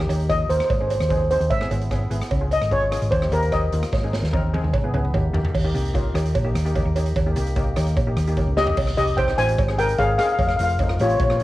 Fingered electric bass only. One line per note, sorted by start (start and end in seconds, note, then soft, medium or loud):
0.09 0.48 D#2 loud
0.49 0.59 D#2 medium
0.70 0.99 G#1 medium
1.00 1.38 D#2 medium
1.40 1.50 D#2 medium
1.51 1.70 G#1 medium
1.71 2.09 G#1 loud
2.11 2.20 G#1 medium
2.31 2.60 C#2 medium
2.61 3.00 G#1 medium
3.02 3.11 G#1 medium
3.12 3.31 D#2 loud
3.32 3.70 D#2 loud
3.72 3.82 D#2 medium
3.93 4.21 G#1 medium
4.22 4.61 D#2 medium
4.63 4.73 D#2 medium
4.74 4.93 G#1 loud
4.94 5.13 C#2 loud
5.14 5.33 D#2 medium
5.33 5.43 D#2 medium
5.55 5.73 D#2 medium
5.74 6.12 C2 medium
6.14 6.34 D#2 medium
6.35 6.54 A#1 medium
6.55 6.84 D#2 loud
6.85 7.14 D#2 medium
7.16 7.35 D#2 medium
7.35 7.74 C2 medium
7.77 7.96 D#2 loud
7.97 8.16 A#1 medium
8.16 8.45 D#2 medium
8.47 8.76 C#2 loud
8.77 8.96 C2 medium
8.98 9.36 C2 medium
9.38 9.57 A1 medium
9.59 9.97 G#1 loud
9.98 10.18 G#1 medium
10.39 10.58 F1 loud
10.59 10.98 F1 medium
11.00 11.19 A1 medium
11.20 11.43 A#1 loud